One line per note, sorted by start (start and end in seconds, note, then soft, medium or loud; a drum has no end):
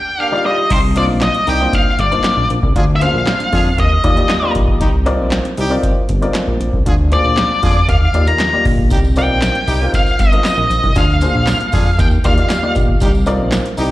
0.00 0.22 G5 medium
0.19 0.56 A#3 medium
0.19 0.56 D4 medium
0.19 0.56 G4 loud
0.19 0.22 F5 medium
0.19 0.41 F5 medium
0.32 0.39 G3 loud
0.32 0.39 D#4 medium
0.32 0.40 F4 medium
0.32 0.40 D5 loud
0.45 0.60 G3 loud
0.45 0.60 D#4 medium
0.45 0.60 F4 medium
0.45 0.60 D5 loud
0.45 0.72 D#5 medium
0.70 1.11 C2 loud
0.70 0.78 G3 medium
0.70 0.78 D#4 medium
0.70 0.78 G4 medium
0.70 0.78 C5 medium
0.70 kick loud
0.70 closed hi-hat medium
0.70 crash loud
0.96 1.33 A#3 medium
0.96 1.33 D4 medium
0.96 1.33 D#4 medium
0.96 1.33 F4 medium
0.96 1.33 C5 medium
0.96 1.04 D5 medium
0.96 closed hi-hat medium
1.09 1.29 A#1 medium
1.21 1.46 D#5 loud
1.21 snare loud
1.21 clap medium
1.21 closed hi-hat loud
1.35 closed hi-hat soft
1.47 1.67 C2 loud
1.47 1.64 G3 loud
1.47 1.64 D#4 loud
1.47 1.64 G4 loud
1.47 1.75 G5 medium
1.47 open hi-hat medium
1.60 1.90 A#3 medium
1.60 1.90 D4 medium
1.60 1.90 D#4 medium
1.60 1.90 F4 medium
1.60 1.90 C5 medium
1.73 1.98 F5 medium
1.73 kick loud
1.73 closed hi-hat medium
1.99 2.19 G1 medium
1.99 2.47 D5 medium
1.99 kick loud
1.99 closed hi-hat medium
2.11 2.63 A#3 medium
2.11 2.63 D4 medium
2.11 2.63 D#4 medium
2.11 2.63 F4 medium
2.11 2.63 C5 medium
2.11 closed hi-hat medium
2.24 snare loud
2.24 clap medium
2.24 closed hi-hat loud
2.37 2.47 A#1 loud
2.50 2.60 A#1 medium
2.50 closed hi-hat medium
2.63 2.73 C2 loud
2.63 kick loud
2.75 3.06 D2 loud
2.75 2.84 D4 medium
2.75 2.84 F4 loud
2.75 2.84 G#4 medium
2.75 kick loud
2.75 closed hi-hat loud
2.96 3.02 E5 medium
3.01 3.60 A#3 medium
3.01 3.07 C#4 medium
3.01 3.60 F4 medium
3.01 3.60 G#4 medium
3.01 3.60 C5 loud
3.01 3.79 F5 loud
3.01 closed hi-hat medium
3.07 3.63 D4 medium
3.14 3.34 A#1 medium
3.27 snare loud
3.27 clap medium
3.27 closed hi-hat loud
3.40 closed hi-hat soft
3.52 3.73 F2 medium
3.52 3.69 D4 medium
3.52 3.69 F4 loud
3.52 3.69 G#4 loud
3.52 kick medium
3.52 open hi-hat medium
3.78 3.98 D#2 loud
3.78 4.52 D#5 medium
3.78 kick loud
3.78 closed hi-hat medium
4.04 4.24 D#2 medium
4.04 4.11 A#3 medium
4.04 4.11 D#4 medium
4.04 4.11 F4 medium
4.04 4.11 G4 medium
4.04 4.11 D5 loud
4.04 kick loud
4.04 closed hi-hat medium
4.16 4.31 A#3 medium
4.16 4.31 D#4 medium
4.16 4.31 F4 medium
4.16 4.32 G4 medium
4.16 4.32 D5 medium
4.16 closed hi-hat medium
4.30 snare loud
4.30 clap medium
4.30 closed hi-hat medium
4.42 4.79 A#3 medium
4.42 4.79 D#4 medium
4.42 4.79 F4 medium
4.42 4.79 G4 medium
4.42 4.79 D5 loud
4.55 4.82 A#1 medium
4.55 kick loud
4.55 closed hi-hat medium
4.68 kick medium
4.81 5.21 C2 loud
4.81 4.89 G3 medium
4.81 4.89 D#4 loud
4.81 4.89 G4 loud
4.81 kick loud
4.81 closed hi-hat loud
5.06 5.43 C4 loud
5.06 5.43 D#4 loud
5.06 5.43 F4 medium
5.06 5.43 A#4 loud
5.06 5.43 D5 loud
5.06 closed hi-hat medium
5.19 5.39 A#1 medium
5.32 snare loud
5.32 clap medium
5.32 closed hi-hat loud
5.45 closed hi-hat medium
5.57 5.78 C2 loud
5.57 5.74 G3 loud
5.57 5.74 D#4 medium
5.57 5.75 G4 loud
5.57 open hi-hat medium
5.70 6.00 C4 medium
5.70 6.00 D#4 medium
5.70 6.00 F4 medium
5.70 6.00 A#4 medium
5.70 6.00 D5 loud
5.83 kick loud
5.83 closed hi-hat medium
6.09 6.29 G1 medium
6.09 kick loud
6.09 closed hi-hat medium
6.22 6.73 C4 medium
6.22 6.73 D#4 medium
6.22 6.73 F4 medium
6.22 6.74 A#4 medium
6.22 6.74 D5 medium
6.22 closed hi-hat medium
6.35 snare loud
6.35 clap loud
6.35 closed hi-hat loud
6.47 6.57 A#1 loud
6.60 6.70 A#1 medium
6.60 closed hi-hat medium
6.73 6.83 C2 medium
6.73 kick medium
6.86 7.16 D2 loud
6.86 6.94 D4 medium
6.86 6.94 F4 medium
6.86 6.94 G#4 loud
6.86 kick loud
6.86 closed hi-hat loud
7.11 7.70 A#3 medium
7.11 7.71 D4 medium
7.11 7.71 F4 medium
7.11 7.71 G#4 medium
7.11 7.71 C5 medium
7.11 7.89 D5 medium
7.11 closed hi-hat medium
7.24 7.44 A#1 medium
7.37 snare loud
7.37 clap medium
7.37 closed hi-hat loud
7.63 7.83 F2 medium
7.63 7.79 D4 loud
7.63 7.79 F4 loud
7.63 7.79 G#4 loud
7.63 kick loud
7.63 open hi-hat medium
7.88 8.08 D#2 loud
7.88 8.29 F5 medium
7.88 kick loud
7.88 closed hi-hat medium
8.14 8.34 D#2 medium
8.14 8.21 A#3 medium
8.14 8.22 D#4 medium
8.14 8.22 F4 medium
8.14 8.22 G4 medium
8.14 8.22 D5 loud
8.14 closed hi-hat medium
8.27 8.42 A#3 medium
8.27 8.42 D#4 medium
8.27 8.42 F4 medium
8.27 8.42 G4 medium
8.27 8.42 A#4 medium
8.27 8.63 A#5 loud
8.27 closed hi-hat medium
8.40 snare loud
8.40 clap loud
8.40 closed hi-hat loud
8.53 8.89 A#3 medium
8.53 8.90 D#4 medium
8.53 8.90 F4 medium
8.53 8.90 G4 medium
8.53 8.90 D5 medium
8.65 8.93 A#1 medium
8.65 kick loud
8.65 open hi-hat medium
8.78 kick medium
8.90 9.31 C2 loud
8.90 8.99 G3 loud
8.90 8.99 D#4 medium
8.90 8.99 G4 loud
8.90 kick loud
8.90 closed hi-hat loud
8.90 tambourine medium
9.04 tambourine soft
9.16 9.53 C4 medium
9.16 9.53 D#4 medium
9.16 9.54 F4 medium
9.16 9.54 A#4 medium
9.16 9.54 D5 medium
9.16 9.91 G5 loud
9.16 closed hi-hat medium
9.16 tambourine medium
9.29 9.49 A#1 medium
9.42 snare loud
9.42 clap loud
9.42 closed hi-hat loud
9.42 tambourine loud
9.55 closed hi-hat soft
9.67 9.88 C2 loud
9.67 9.84 G3 loud
9.67 9.84 D#4 medium
9.67 9.84 G4 loud
9.67 open hi-hat medium
9.67 tambourine soft
9.81 10.10 C4 medium
9.81 10.10 D#4 medium
9.81 10.10 F4 medium
9.81 10.11 A#4 medium
9.81 10.11 F5 medium
9.93 10.20 F5 medium
9.93 kick loud
9.93 closed hi-hat medium
9.93 tambourine soft
10.06 tambourine soft
10.19 10.39 G1 medium
10.19 10.44 D#5 medium
10.19 kick loud
10.19 closed hi-hat medium
10.19 tambourine soft
10.32 10.83 C4 medium
10.32 10.38 D4 soft
10.32 10.84 F4 medium
10.32 10.84 A#4 medium
10.32 10.84 D#5 medium
10.32 closed hi-hat medium
10.38 10.87 D#4 medium
10.45 10.97 D#5 medium
10.45 snare loud
10.45 clap loud
10.45 closed hi-hat loud
10.45 tambourine medium
10.57 10.68 A#1 loud
10.70 10.80 A#1 medium
10.70 closed hi-hat medium
10.70 tambourine soft
10.83 10.93 C2 loud
10.83 kick medium
10.83 tambourine soft
10.95 11.26 D2 loud
10.95 11.04 D4 medium
10.95 11.04 F4 loud
10.95 11.04 G#4 medium
10.95 12.03 F5 loud
10.95 kick loud
10.95 closed hi-hat loud
10.95 tambourine medium
11.09 tambourine soft
11.21 11.81 A#3 medium
11.21 11.81 D4 medium
11.21 11.81 F4 medium
11.21 11.81 G#4 medium
11.21 11.81 C5 medium
11.21 closed hi-hat medium
11.21 tambourine medium
11.35 11.54 A#1 loud
11.47 snare loud
11.47 clap medium
11.47 closed hi-hat medium
11.47 tambourine medium
11.61 closed hi-hat soft
11.72 11.93 F2 medium
11.72 11.89 D4 loud
11.72 11.89 F4 loud
11.72 11.90 G#4 loud
11.72 kick medium
11.72 open hi-hat medium
11.72 tambourine medium
11.87 tambourine soft
11.99 12.19 D#2 loud
11.99 12.07 G5 loud
11.99 kick loud
11.99 closed hi-hat medium
11.99 tambourine medium
12.11 tambourine soft
12.24 12.45 D#2 loud
12.24 12.32 A#3 loud
12.24 12.32 D#4 medium
12.24 12.32 F4 medium
12.24 12.32 G4 medium
12.24 12.32 D5 medium
12.24 12.73 F5 medium
12.24 kick loud
12.24 closed hi-hat medium
12.24 tambourine soft
12.37 12.52 A#3 medium
12.37 12.52 D#4 medium
12.37 12.52 F4 medium
12.37 12.52 G4 medium
12.37 12.52 D5 medium
12.37 closed hi-hat medium
12.50 snare loud
12.50 clap loud
12.50 closed hi-hat loud
12.50 tambourine loud
12.62 12.99 A#3 medium
12.62 13.00 D#4 medium
12.62 13.00 F4 medium
12.62 13.00 G4 medium
12.62 13.00 D5 medium
12.75 12.96 A#1 medium
12.75 kick loud
12.75 closed hi-hat medium
12.75 tambourine medium
12.89 kick loud
13.00 13.41 C2 loud
13.00 13.09 G3 medium
13.00 13.10 D#4 medium
13.00 13.09 G4 loud
13.00 kick loud
13.00 closed hi-hat loud
13.00 tambourine medium
13.15 tambourine soft
13.26 13.64 C4 loud
13.26 13.64 D#4 loud
13.26 13.64 F4 medium
13.26 13.64 A#4 loud
13.26 13.64 D5 loud
13.26 closed hi-hat medium
13.26 tambourine medium
13.39 13.59 A#1 medium
13.52 snare loud
13.52 clap medium
13.52 closed hi-hat loud
13.52 tambourine medium
13.66 closed hi-hat medium
13.77 13.91 C2 loud
13.77 13.91 G3 loud
13.77 13.91 D#4 loud
13.77 13.91 G4 loud
13.77 open hi-hat medium
13.77 tambourine medium